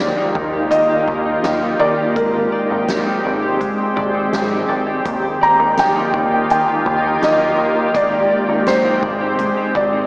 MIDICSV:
0, 0, Header, 1, 6, 480
1, 0, Start_track
1, 0, Key_signature, -3, "major"
1, 0, Tempo, 722892
1, 1436, Time_signature, 4, 2, 24, 8
1, 6684, End_track
2, 0, Start_track
2, 0, Title_t, "Felt piano"
2, 0, Program_c, 0, 0
2, 0, Note_on_c, 0, 74, 84
2, 470, Note_on_c, 0, 75, 79
2, 504, Note_off_c, 0, 74, 0
2, 1192, Note_on_c, 0, 74, 82
2, 1214, Note_off_c, 0, 75, 0
2, 1436, Note_on_c, 0, 70, 67
2, 1441, Note_off_c, 0, 74, 0
2, 1889, Note_off_c, 0, 70, 0
2, 3604, Note_on_c, 0, 82, 79
2, 3847, Note_off_c, 0, 82, 0
2, 3847, Note_on_c, 0, 79, 78
2, 4315, Note_off_c, 0, 79, 0
2, 4325, Note_on_c, 0, 79, 83
2, 4803, Note_on_c, 0, 75, 82
2, 4815, Note_off_c, 0, 79, 0
2, 5284, Note_on_c, 0, 74, 86
2, 5294, Note_off_c, 0, 75, 0
2, 5760, Note_on_c, 0, 72, 69
2, 5774, Note_off_c, 0, 74, 0
2, 6480, Note_on_c, 0, 74, 82
2, 6500, Note_off_c, 0, 72, 0
2, 6684, Note_off_c, 0, 74, 0
2, 6684, End_track
3, 0, Start_track
3, 0, Title_t, "Clean electric guitar"
3, 0, Program_c, 1, 27
3, 0, Note_on_c, 1, 51, 74
3, 0, Note_on_c, 1, 63, 49
3, 0, Note_on_c, 1, 67, 51
3, 0, Note_on_c, 1, 74, 55
3, 111, Note_off_c, 1, 63, 0
3, 114, Note_on_c, 1, 63, 55
3, 352, Note_off_c, 1, 67, 0
3, 354, Note_on_c, 1, 67, 55
3, 473, Note_off_c, 1, 51, 0
3, 475, Note_on_c, 1, 51, 68
3, 495, Note_off_c, 1, 74, 0
3, 592, Note_off_c, 1, 67, 0
3, 595, Note_on_c, 1, 67, 50
3, 830, Note_off_c, 1, 63, 0
3, 833, Note_on_c, 1, 63, 49
3, 950, Note_off_c, 1, 67, 0
3, 953, Note_on_c, 1, 67, 47
3, 1070, Note_off_c, 1, 63, 0
3, 1072, Note_on_c, 1, 63, 48
3, 1193, Note_on_c, 1, 74, 69
3, 1311, Note_off_c, 1, 67, 0
3, 1313, Note_on_c, 1, 67, 54
3, 1434, Note_on_c, 1, 56, 76
3, 1550, Note_off_c, 1, 67, 0
3, 1552, Note_on_c, 1, 67, 48
3, 1672, Note_off_c, 1, 74, 0
3, 1675, Note_on_c, 1, 74, 60
3, 1695, Note_off_c, 1, 51, 0
3, 1695, Note_off_c, 1, 63, 0
3, 1793, Note_on_c, 1, 63, 48
3, 1913, Note_off_c, 1, 67, 0
3, 1916, Note_on_c, 1, 67, 51
3, 2032, Note_off_c, 1, 63, 0
3, 2035, Note_on_c, 1, 63, 53
3, 2149, Note_off_c, 1, 74, 0
3, 2152, Note_on_c, 1, 74, 47
3, 2270, Note_off_c, 1, 67, 0
3, 2273, Note_on_c, 1, 67, 60
3, 2385, Note_off_c, 1, 56, 0
3, 2393, Note_on_c, 1, 56, 78
3, 2508, Note_off_c, 1, 67, 0
3, 2511, Note_on_c, 1, 67, 46
3, 2628, Note_off_c, 1, 74, 0
3, 2630, Note_on_c, 1, 74, 66
3, 2750, Note_off_c, 1, 63, 0
3, 2752, Note_on_c, 1, 63, 51
3, 2871, Note_off_c, 1, 67, 0
3, 2874, Note_on_c, 1, 67, 52
3, 2991, Note_off_c, 1, 63, 0
3, 2993, Note_on_c, 1, 63, 50
3, 3109, Note_off_c, 1, 74, 0
3, 3112, Note_on_c, 1, 74, 65
3, 3229, Note_off_c, 1, 67, 0
3, 3232, Note_on_c, 1, 67, 46
3, 3354, Note_on_c, 1, 51, 67
3, 3402, Note_off_c, 1, 56, 0
3, 3470, Note_off_c, 1, 67, 0
3, 3473, Note_on_c, 1, 67, 46
3, 3593, Note_off_c, 1, 74, 0
3, 3595, Note_on_c, 1, 74, 64
3, 3615, Note_off_c, 1, 63, 0
3, 3716, Note_on_c, 1, 63, 50
3, 3834, Note_off_c, 1, 67, 0
3, 3836, Note_on_c, 1, 67, 52
3, 3953, Note_off_c, 1, 63, 0
3, 3956, Note_on_c, 1, 63, 59
3, 4073, Note_off_c, 1, 74, 0
3, 4076, Note_on_c, 1, 74, 56
3, 4192, Note_off_c, 1, 67, 0
3, 4194, Note_on_c, 1, 67, 53
3, 4312, Note_off_c, 1, 51, 0
3, 4315, Note_on_c, 1, 51, 79
3, 4433, Note_off_c, 1, 67, 0
3, 4436, Note_on_c, 1, 67, 50
3, 4673, Note_off_c, 1, 63, 0
3, 4676, Note_on_c, 1, 63, 53
3, 4695, Note_off_c, 1, 74, 0
3, 4792, Note_off_c, 1, 67, 0
3, 4795, Note_on_c, 1, 67, 44
3, 4911, Note_off_c, 1, 63, 0
3, 4914, Note_on_c, 1, 63, 47
3, 5151, Note_off_c, 1, 67, 0
3, 5154, Note_on_c, 1, 67, 47
3, 5271, Note_on_c, 1, 56, 77
3, 5392, Note_off_c, 1, 67, 0
3, 5395, Note_on_c, 1, 67, 50
3, 5514, Note_on_c, 1, 74, 60
3, 5534, Note_off_c, 1, 51, 0
3, 5534, Note_off_c, 1, 63, 0
3, 5638, Note_on_c, 1, 63, 44
3, 5752, Note_off_c, 1, 67, 0
3, 5755, Note_on_c, 1, 67, 57
3, 5874, Note_off_c, 1, 63, 0
3, 5877, Note_on_c, 1, 63, 57
3, 5992, Note_off_c, 1, 74, 0
3, 5995, Note_on_c, 1, 74, 54
3, 6113, Note_off_c, 1, 67, 0
3, 6116, Note_on_c, 1, 67, 57
3, 6225, Note_off_c, 1, 56, 0
3, 6233, Note_on_c, 1, 56, 76
3, 6352, Note_off_c, 1, 67, 0
3, 6354, Note_on_c, 1, 67, 51
3, 6590, Note_off_c, 1, 63, 0
3, 6593, Note_on_c, 1, 63, 49
3, 6613, Note_off_c, 1, 74, 0
3, 6684, Note_off_c, 1, 56, 0
3, 6684, Note_off_c, 1, 63, 0
3, 6684, Note_off_c, 1, 67, 0
3, 6684, End_track
4, 0, Start_track
4, 0, Title_t, "Ambient pad"
4, 0, Program_c, 2, 92
4, 0, Note_on_c, 2, 51, 75
4, 0, Note_on_c, 2, 58, 72
4, 0, Note_on_c, 2, 63, 71
4, 0, Note_on_c, 2, 65, 78
4, 0, Note_on_c, 2, 67, 84
4, 1416, Note_off_c, 2, 58, 0
4, 1417, Note_off_c, 2, 63, 0
4, 1418, Note_off_c, 2, 51, 0
4, 1418, Note_off_c, 2, 65, 0
4, 1436, Note_on_c, 2, 56, 75
4, 1440, Note_on_c, 2, 60, 73
4, 3337, Note_off_c, 2, 56, 0
4, 3339, Note_off_c, 2, 60, 0
4, 3360, Note_on_c, 2, 65, 73
4, 3361, Note_on_c, 2, 51, 87
4, 3361, Note_on_c, 2, 58, 75
4, 3361, Note_on_c, 2, 63, 77
4, 5259, Note_off_c, 2, 51, 0
4, 5259, Note_off_c, 2, 58, 0
4, 5259, Note_off_c, 2, 63, 0
4, 5259, Note_off_c, 2, 65, 0
4, 5277, Note_on_c, 2, 56, 80
4, 5278, Note_on_c, 2, 60, 67
4, 6684, Note_off_c, 2, 56, 0
4, 6684, Note_off_c, 2, 60, 0
4, 6684, Note_off_c, 2, 67, 0
4, 6684, End_track
5, 0, Start_track
5, 0, Title_t, "Analog synth bass"
5, 0, Program_c, 3, 38
5, 0, Note_on_c, 3, 39, 87
5, 87, Note_off_c, 3, 39, 0
5, 234, Note_on_c, 3, 39, 91
5, 552, Note_off_c, 3, 39, 0
5, 715, Note_on_c, 3, 39, 97
5, 927, Note_off_c, 3, 39, 0
5, 955, Note_on_c, 3, 39, 96
5, 1166, Note_off_c, 3, 39, 0
5, 1194, Note_on_c, 3, 39, 91
5, 1436, Note_on_c, 3, 32, 109
5, 1446, Note_off_c, 3, 39, 0
5, 1647, Note_off_c, 3, 32, 0
5, 1798, Note_on_c, 3, 32, 81
5, 2008, Note_off_c, 3, 32, 0
5, 2158, Note_on_c, 3, 32, 100
5, 2474, Note_off_c, 3, 32, 0
5, 2634, Note_on_c, 3, 32, 93
5, 2846, Note_off_c, 3, 32, 0
5, 2877, Note_on_c, 3, 32, 93
5, 3088, Note_off_c, 3, 32, 0
5, 3115, Note_on_c, 3, 32, 86
5, 3327, Note_off_c, 3, 32, 0
5, 3356, Note_on_c, 3, 39, 91
5, 3567, Note_off_c, 3, 39, 0
5, 3716, Note_on_c, 3, 39, 93
5, 3927, Note_off_c, 3, 39, 0
5, 4076, Note_on_c, 3, 39, 96
5, 4393, Note_off_c, 3, 39, 0
5, 4555, Note_on_c, 3, 39, 96
5, 4767, Note_off_c, 3, 39, 0
5, 4796, Note_on_c, 3, 39, 99
5, 5007, Note_off_c, 3, 39, 0
5, 5036, Note_on_c, 3, 39, 94
5, 5275, Note_on_c, 3, 32, 104
5, 5285, Note_off_c, 3, 39, 0
5, 5487, Note_off_c, 3, 32, 0
5, 5635, Note_on_c, 3, 32, 81
5, 5847, Note_off_c, 3, 32, 0
5, 5994, Note_on_c, 3, 32, 93
5, 6312, Note_off_c, 3, 32, 0
5, 6474, Note_on_c, 3, 32, 97
5, 6684, Note_off_c, 3, 32, 0
5, 6684, End_track
6, 0, Start_track
6, 0, Title_t, "Drums"
6, 234, Note_on_c, 9, 36, 102
6, 300, Note_off_c, 9, 36, 0
6, 473, Note_on_c, 9, 42, 58
6, 539, Note_off_c, 9, 42, 0
6, 715, Note_on_c, 9, 36, 75
6, 781, Note_off_c, 9, 36, 0
6, 953, Note_on_c, 9, 38, 98
6, 954, Note_on_c, 9, 42, 70
6, 1020, Note_off_c, 9, 38, 0
6, 1021, Note_off_c, 9, 42, 0
6, 1435, Note_on_c, 9, 42, 71
6, 1436, Note_on_c, 9, 36, 110
6, 1502, Note_off_c, 9, 36, 0
6, 1502, Note_off_c, 9, 42, 0
6, 1914, Note_on_c, 9, 42, 66
6, 1915, Note_on_c, 9, 38, 104
6, 1980, Note_off_c, 9, 42, 0
6, 1982, Note_off_c, 9, 38, 0
6, 2396, Note_on_c, 9, 36, 72
6, 2396, Note_on_c, 9, 42, 50
6, 2462, Note_off_c, 9, 36, 0
6, 2463, Note_off_c, 9, 42, 0
6, 2636, Note_on_c, 9, 36, 85
6, 2702, Note_off_c, 9, 36, 0
6, 2874, Note_on_c, 9, 38, 101
6, 2876, Note_on_c, 9, 42, 64
6, 2941, Note_off_c, 9, 38, 0
6, 2942, Note_off_c, 9, 42, 0
6, 3355, Note_on_c, 9, 42, 69
6, 3357, Note_on_c, 9, 36, 106
6, 3421, Note_off_c, 9, 42, 0
6, 3423, Note_off_c, 9, 36, 0
6, 3834, Note_on_c, 9, 42, 69
6, 3835, Note_on_c, 9, 38, 91
6, 3900, Note_off_c, 9, 42, 0
6, 3901, Note_off_c, 9, 38, 0
6, 4076, Note_on_c, 9, 36, 100
6, 4142, Note_off_c, 9, 36, 0
6, 4316, Note_on_c, 9, 42, 51
6, 4382, Note_off_c, 9, 42, 0
6, 4556, Note_on_c, 9, 36, 79
6, 4623, Note_off_c, 9, 36, 0
6, 4796, Note_on_c, 9, 38, 96
6, 4797, Note_on_c, 9, 42, 68
6, 4862, Note_off_c, 9, 38, 0
6, 4863, Note_off_c, 9, 42, 0
6, 5276, Note_on_c, 9, 36, 107
6, 5276, Note_on_c, 9, 42, 77
6, 5342, Note_off_c, 9, 36, 0
6, 5342, Note_off_c, 9, 42, 0
6, 5754, Note_on_c, 9, 42, 72
6, 5755, Note_on_c, 9, 38, 108
6, 5820, Note_off_c, 9, 42, 0
6, 5821, Note_off_c, 9, 38, 0
6, 5995, Note_on_c, 9, 36, 88
6, 6061, Note_off_c, 9, 36, 0
6, 6234, Note_on_c, 9, 36, 73
6, 6234, Note_on_c, 9, 42, 53
6, 6300, Note_off_c, 9, 42, 0
6, 6301, Note_off_c, 9, 36, 0
6, 6475, Note_on_c, 9, 36, 89
6, 6541, Note_off_c, 9, 36, 0
6, 6684, End_track
0, 0, End_of_file